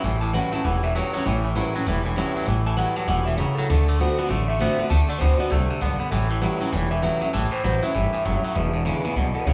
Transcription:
0.03 A1 A2 E3
0.21 A2 E3 A5
0.34 A2 E3 F#3 G3 C#4 E4 F#5
0.52 A2 F#3 C#4 E4 A5, muted upright bass stroke
0.64 E1 E2 A2 E3 F#5
0.83 A2 E3 E5
0.95 A2 E3 F#3 G3 C#4 E4 C#5
1.13 A2 F#3 C#4 E4 C#5, muted upright bass stroke
1.25 A1 A2 E3
1.44 A2 E3
1.55 A2 E3 F#3 G3 C#4 E4
1.74 A2 F#3 C#4 E4, muted upright bass stroke
1.86 E1 E2 A2 E3
2.06 A2 E3
2.16 A2 E3 F#3 G3 C#4 E4
2.36 A2 F#3, muted upright bass stroke
2.46 A1 A2 E3
2.66 A2 E3 A5
2.76 A2 E3 F#3 G3 C#4 E4 F#5
2.95 A2 F#3 A5, muted upright bass stroke
3.07 E1 A2 B2 E3 F#5
3.25 A2 E3 E5
3.37 A2 C#3 F#3 C#5
3.55 A2 F#3 A4, muted upright bass stroke
3.70 D2 D3 A3
3.88 D3 A3
3.99 D3 A3 B3 C4 F#4
4.17 D3 B3 C4 F#4, muted upright bass stroke
4.29 A1 A2 D3 A3
4.48 D3 A3 E5
4.59 D3 A3 B3 C4 F#4
4.78 D3 B3 C4 F#4, muted upright bass stroke
4.90 D2 D3 A3 A5
5.08 D3 A3 D5, muted upright bass stroke
5.18 D2 D3 A3 B3 C4 F#4 C5
5.38 D3 B3 C4 F#4 D5, muted upright bass stroke
5.50 C2 C3 D3 A3
5.69 D3 A3, muted upright bass stroke
5.81 B1 G2 D3 B3
5.99 D3 B3, muted upright bass stroke
6.11 A1 A2 E3
6.30 A2 E3
6.41 A2 E3 F#3 G3 C#4 E4
6.60 A2 F#3 C#4 E4, muted upright bass stroke
6.72 E1 E2 A2 E3
6.91 A2 E3 E5
7.02 A2 E3 F#3 G3 C#4 E4
7.21 A2 F#3 C#4 E4, muted upright bass stroke
7.33 A1 A2 E3 A5
7.51 A2 E3 C5, muted upright bass stroke
7.64 A1 A2 E3 F#3 G3 C#4 E4 C5
7.82 A2 F#3 C#4 E4 E5
7.95 G1 G2 A2 E3
8.13 A2 E3, muted upright bass stroke
8.25 F#1 F#2 A2 F#3
8.44 A2 F#3, muted upright bass stroke
8.55 E1 E2 B2
8.74 E2 B2
8.85 E2 C#3 D3 G#3 B3 E4
9.04 E2 C#3 B3 E4, muted upright bass stroke
9.16 B1 E2 B2
9.34 E2 B2 B4, muted upright bass stroke
9.45 C#2 E2 C#3 C#5

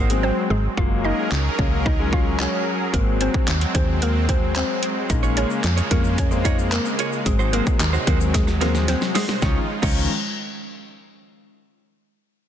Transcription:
Already playing: G#1 F#3 G#3 C4 D#4
0.10 F#3 G#3 C4, muted clean electric guitar stroke, closed hi-hat, shaker
0.23 C4 C5
0.50 G#1 G#3 G#4
0.77 F#1 F#3 G#3 A#3 C#4 F4 G#4 A#4 F5, kick
1.04 D#4 D#5
1.32 C#2, clap
1.58 C#2 F#3 G#3 A#3 C#4 C#5, kick
1.85 D#4 D#5, kick
1.99 F#3 G#3 C#4
2.13 F4 F5, kick
2.39 C#4 C#5, clap
2.93 G#1 F#3 G#3 A#3 C4 A#4, kick, closed hi-hat
3.21 C4 C5, closed hi-hat
3.34 kick
3.48 D#2, clap, closed hi-hat
3.61 closed hi-hat
3.75 D#2 F#3 G#3 C4 C5, kick, closed hi-hat
4.02 A#3 A#4, closed hi-hat
4.29 F#3 G#3 C4 C5, kick, closed hi-hat
4.56 C4 C5, clap, closed hi-hat
4.83 closed hi-hat
5.10 A#1 C#3 G#3 A#3 C#4 D#4 D#5, muted clean electric guitar stroke, kick, closed hi-hat, shaker
5.23 F4 G#4 C#5, shaker
5.36 C#4 F4 G#4 C#5, closed hi-hat
5.50 muted clean electric guitar stroke, shaker
5.64 F2, muted clean electric guitar stroke, clap, closed hi-hat, shaker
5.77 F4 G#4 C#5, closed hi-hat, shaker
5.90 F2 G#3 A#3 C#4 F4 G#4 A#4 C#5, kick, closed hi-hat
6.04 muted clean electric guitar stroke, shaker
6.18 C#4 C#5, kick, closed hi-hat, shaker
6.31 G#3 A#3 C4, muted clean electric guitar stroke, shaker
6.45 D#4 F4 G#4 C#5 D#5, kick, closed hi-hat, shaker
6.58 muted clean electric guitar stroke, shaker
6.72 A#3 A#4, clap, closed hi-hat, shaker
6.85 muted clean electric guitar stroke, shaker
6.99 F4 G#4 C#5, closed hi-hat, shaker
7.12 muted clean electric guitar stroke, shaker
7.26 G#1 C3 F#3 G#3 C4 G#4, muted clean electric guitar stroke, kick, closed hi-hat, shaker
7.39 D#4 F#4 C5, shaker
7.53 A#3 D#4 F#4 A#4 C5, closed hi-hat
7.66 muted clean electric guitar stroke, kick, shaker
7.80 D#2, muted clean electric guitar stroke, clap, closed hi-hat, shaker
7.93 D#4 F#4 C5, shaker
8.07 D#2 F#3 G#3 A#3 C4 D#4 F#4 A#4 C5, kick, closed hi-hat
8.20 muted clean electric guitar stroke, shaker
8.34 G#3 G#4, kick, snare, closed hi-hat, shaker
8.47 muted clean electric guitar stroke, snare, shaker
8.61 F#3 G#3 A#3 C4 D#4 F#4 A#4 C5, snare, closed hi-hat, shaker
8.74 muted clean electric guitar stroke, snare, shaker
8.88 C4 C5, muted clean electric guitar stroke, snare, closed hi-hat, shaker
9.01 muted clean electric guitar stroke, snare, shaker
9.15 G#3 D#4 F#4 G#4 C5, snare, open hi-hat, shaker
9.28 D#4 F#4 C5, snare, shaker
9.42 C#2 C#3 D#3 F3 G#3 C#4 D#4 F4 C#5, kick, snare, shaker
9.82 C#2 D#3 F3 G#3 C#4 D#4 F4 C#5, kick, crash, shaker

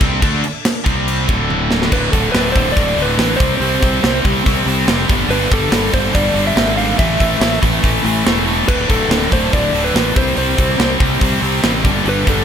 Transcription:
Already playing: D4 A4 E5
0.00 C2 C3 G3 C4, kick, crash
0.21 D2 D3 A3 D4, kick, crash
0.44 crash
0.65 snare, crash
0.83 C2 C3 G3 C4 G4 D5, kick, crash
1.08 crash
1.26 D1 D2 A2 D3 D4 A4 E5, kick, crash
1.50 high tom
1.71 snare
1.82 snare
1.91 D1 D2 A2 D3 D4 A4 B4 E5, kick, crash
2.12 D1 D2 A2 D3 A4, kick, open hi-hat
2.32 D1 D2 A2 D3 B4, snare, open hi-hat
2.52 D1 D2 A2 D3 C5, kick, open hi-hat
2.72 D2 A2 D5
2.76 D1 D3, kick, open hi-hat
2.96 D1 D2 A2 D3, open hi-hat
3.02 B4
3.17 A1 D2 A2 D3, snare, open hi-hat
3.36 C2 C3 G3 C4 G4 C5 D5, kick, open hi-hat
3.57 C2 C3 G3 C4 C5
3.62 open hi-hat
3.80 C2 C3 G3 C4, kick, open hi-hat
4.02 C2 C3 G3 C4, snare, open hi-hat
4.23 C2 C3 G3 C4, kick, open hi-hat
4.45 C2 C3 G3 C4, kick, open hi-hat
4.65 C2 C3 G3 C4, open hi-hat
4.86 F1 C3 G3 C4, snare, open hi-hat
5.08 G1 G2 D3 G3 D4 A4, kick, open hi-hat
5.28 G1 G2 D3 G3 B4, open hi-hat
5.50 G1 G2 D3 G3 A4, kick, open hi-hat
5.71 G1 G2 D3 G3, snare, open hi-hat
5.92 G1 G2 D3 G3 C5, kick, open hi-hat
6.13 G1 G2 D3 G3 D5, kick, open hi-hat
6.34 G1 G2 D3 G3, open hi-hat
6.47 E5
6.55 G#1 G2 D3 G3, snare, open hi-hat
6.76 G2 D3 G3 F5, open hi-hat
6.97 A1 A2 E3 A3 E4 B4 E5, kick, open hi-hat
7.18 A1 A2 E3 A3, kick, open hi-hat
7.39 A1 A2 E3 A3, snare, open hi-hat
7.53 snare
7.60 A1 A2 E3 A3, kick, open hi-hat
7.82 A1 A2 E3 A3, kick, open hi-hat
8.04 A1 A2 E3 A3, open hi-hat
8.25 E1 A2 E3 A3, snare, open hi-hat
8.46 A2 E3 A3, open hi-hat
8.67 D1 D2 A2 D3 D4 A4 B4 E5, kick, crash
8.89 D1 D2 A2 D3 A4, kick, open hi-hat
9.08 D1 D2 A2 D3, snare, open hi-hat
9.22 snare
9.30 D1 D2 A2 D3 C5, kick, open hi-hat
9.52 D1 D2 A2 D3 D5, kick, open hi-hat
9.72 D1 D2 A2 D3, open hi-hat
9.84 B4
9.93 A1 D2 A2 D3, snare, open hi-hat
10.14 C2 C3 G3 C4 G4 C5 D5, kick, open hi-hat
10.35 C2 C3 G3 C4 C5, open hi-hat
10.56 C2 C3 G3 C4, kick, open hi-hat
10.78 C2 C3 G3 C4, snare, open hi-hat
10.99 C2 C3 G3 C4, kick, open hi-hat
11.20 C2 C3 G3 C4, kick, open hi-hat
11.42 C2 C3 G3 C4, open hi-hat
11.62 A1 C3 G3 C4, snare, open hi-hat
11.82 G1 G2 D3 G3 D4 A4, kick, open hi-hat
12.04 G1 G2 D3 G3, open hi-hat
12.09 B4
12.25 G1 G2 D3 G3, kick, open hi-hat
12.30 A4

